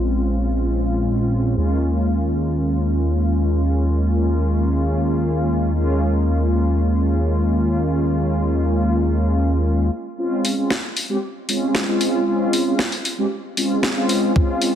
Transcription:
Already playing: analog synth bass A#1, analog polysynth G#3 C4 C#4 F4
1.56 analog synth bass D#2, analog polysynth G#3 A#3 C#4 F4
5.74 analog polysynth G#3 A#3 C#4 F4
10.17 analog polysynth G#3 C4 C#4 F4
10.45 open hi-hat
10.57 analog polysynth G#3 C4 C#4 F4
10.70 snare
10.97 open hi-hat
11.09 analog polysynth G#3 C4 C#4 G4
11.48 analog polysynth G#3 C4 C#4 F4, open hi-hat
11.75 snare
11.88 analog polysynth G#3 C4 C#4 F4
12.01 open hi-hat
12.26 analog polysynth G#3 C4 C#4 F4
12.53 open hi-hat
12.66 analog polysynth G#3 C4 C#4 F4
12.79 snare
12.92 open hi-hat
13.05 open hi-hat
13.18 analog polysynth G#3 C4 C#4 G4
13.57 analog polysynth G#3 C4 C#4 F4, open hi-hat
13.83 snare
13.96 analog polysynth G#3 C4 C#4 F4
14.09 open hi-hat
14.36 analog polysynth C4 C#4, kick
14.62 open hi-hat

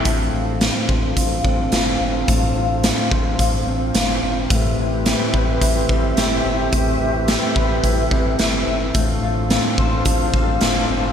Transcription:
Already playing: overdriven electric guitar C4 A4, clean electric guitar C4 E4 A4
0.05 sub bass A1, clean electric guitar A2, flute section D4 F4 A4 C5 F5, kick, closed hi-hat
0.33 sub bass A1, clean electric guitar F4
0.61 clean electric guitar C4, snare, closed hi-hat
0.89 sub bass A1, clean electric guitar C5, kick
1.16 sub bass A1, clean electric guitar F4, kick, closed hi-hat
1.44 sub bass A1, clean electric guitar C4, kick
1.72 sub bass G1, clean electric guitar F4, snare, closed hi-hat
2.00 sub bass G1, clean electric guitar C4
2.28 sub bass A1, clean electric guitar A2, kick, closed hi-hat
2.55 sub bass A1, clean electric guitar F4
2.83 clean electric guitar C4, snare, closed hi-hat
3.11 sub bass A1, clean electric guitar C5, kick
3.39 sub bass A1, clean electric guitar F4, kick, closed hi-hat
3.66 sub bass A1, clean electric guitar C4
3.94 sub bass G1, clean electric guitar F4, snare, closed hi-hat
4.23 sub bass G1, clean electric guitar C4
4.50 sub bass A1, clean electric guitar A2, flute section C4 G4 A4 B4 E5, kick, closed hi-hat
4.78 sub bass A1, clean electric guitar E4
5.06 clean electric guitar C4, snare, closed hi-hat
5.34 sub bass A1, clean electric guitar B4, kick
5.61 sub bass A1, clean electric guitar E4, kick, closed hi-hat
5.89 sub bass A1, clean electric guitar C4, kick
6.17 sub bass G1, clean electric guitar E4, snare, closed hi-hat
6.45 sub bass G1, clean electric guitar C4
6.72 sub bass A1, clean electric guitar A2, flute section B4, kick, closed hi-hat
7.00 sub bass A1, clean electric guitar E4
7.28 clean electric guitar C4, snare, closed hi-hat
7.56 sub bass A1, clean electric guitar B4, kick
7.84 sub bass A1, clean electric guitar E4, kick, closed hi-hat
8.11 sub bass A1, clean electric guitar C4, kick
8.39 sub bass G1, clean electric guitar E4, snare, closed hi-hat
8.67 sub bass G1, clean electric guitar C4
8.94 sub bass A1, clean electric guitar A2, flute section D4 F4 C5 F5, kick, closed hi-hat
9.22 sub bass A1, clean electric guitar F4
9.50 clean electric guitar C4, snare, closed hi-hat
9.78 sub bass A1, clean electric guitar C5, kick
10.05 sub bass A1, clean electric guitar F4, kick, closed hi-hat
10.34 sub bass A1, clean electric guitar C4, kick
10.61 sub bass G1, clean electric guitar F4, snare, closed hi-hat
10.89 sub bass G1, clean electric guitar C4

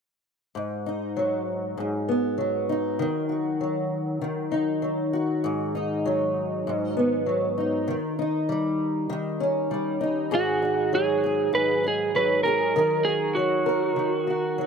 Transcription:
0.55 steel-string acoustic guitar G#2
0.86 steel-string acoustic guitar D#4
1.17 steel-string acoustic guitar F#3
1.77 steel-string acoustic guitar G#2
2.08 steel-string acoustic guitar B3
2.38 steel-string acoustic guitar F#3
2.69 steel-string acoustic guitar D#4
2.99 steel-string acoustic guitar D#3
3.29 steel-string acoustic guitar F#4
3.61 steel-string acoustic guitar F#3
4.21 steel-string acoustic guitar D#3
4.52 steel-string acoustic guitar D#4
4.82 steel-string acoustic guitar F#3
5.13 steel-string acoustic guitar F#4
5.44 steel-string acoustic guitar G#2
5.75 steel-string acoustic guitar D#4
6.05 steel-string acoustic guitar F#3
6.67 steel-string acoustic guitar G#2
6.97 steel-string acoustic guitar B3
7.26 steel-string acoustic guitar F#3
7.58 steel-string acoustic guitar D#4
7.88 steel-string acoustic guitar D#3
8.19 steel-string acoustic guitar D#4
8.49 steel-string acoustic guitar G3
9.10 steel-string acoustic guitar D#3
9.40 steel-string acoustic guitar C#4
9.71 steel-string acoustic guitar G3
10.01 steel-string acoustic guitar D#4
10.31 steel-string acoustic guitar G#2 G#4, electric slide guitar F#4
10.62 steel-string acoustic guitar D#4
10.93 steel-string acoustic guitar F#3, electric slide guitar G#4
11.24 steel-string acoustic guitar G#4
11.53 steel-string acoustic guitar G#2, electric slide guitar B4
11.84 steel-string acoustic guitar D#4, electric slide guitar G#4
12.15 steel-string acoustic guitar F#3, electric slide guitar B4
12.43 steel-string acoustic guitar G#4, electric slide guitar A#4
12.76 steel-string acoustic guitar D#3 A#4
13.05 steel-string acoustic guitar F#4, electric slide guitar G#4
13.35 steel-string acoustic guitar F#3, electric slide guitar F#4
13.66 steel-string acoustic guitar A#4
13.96 steel-string acoustic guitar D#3
14.27 steel-string acoustic guitar F#4
14.58 steel-string acoustic guitar F#3

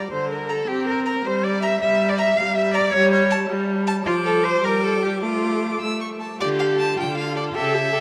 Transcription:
Already playing: violin D5
0.11 viola D3, cello C5, violin C5
0.31 cello A#4, violin A#4
0.49 violin A4 A#5, cello A4
0.68 viola C4, violin G4, cello G4
0.87 violin A#4, cello A#4
1.06 cello A#4, violin A#4 A#5
1.25 viola G3, violin C5, cello C5
1.44 cello D5, violin D5
1.62 cello E5, violin E5 A#5
1.81 viola G3, cello E5, violin E5
2.08 violin D5, cello D5
2.18 violin E5 A#5, cello E5
2.37 viola G3, violin F5, cello F5
2.55 cello E5, violin E5
2.74 cello D5, violin D5 A#5
2.93 viola G3, cello C#5, violin C#5
3.12 cello C#5, violin C#5
3.30 violin A5
3.49 viola G3
3.87 violin A5
4.06 viola F3, cello F4, violin F4 D6
4.25 cello A4, violin A4
4.44 violin C5, cello C5
4.63 viola G3, violin A#4 D6, cello A#4
4.83 violin A4, cello A4
5.03 violin G4, cello G4
5.22 viola A3, violin F4 D6, cello F4
5.81 viola A3, violin E6
6.01 violin C#6
6.21 violin A5
6.40 cello D3, violin F4 D5, viola G4
6.59 violin A4 F5
6.79 violin F4 A5
6.98 cello D3, viola F4, violin A4 G5
7.17 violin F4 F5
7.36 violin A4 D5
7.54 cello C#3, violin G4 E5, viola A4
7.74 viola G4, violin A4
7.92 violin G4, viola A4

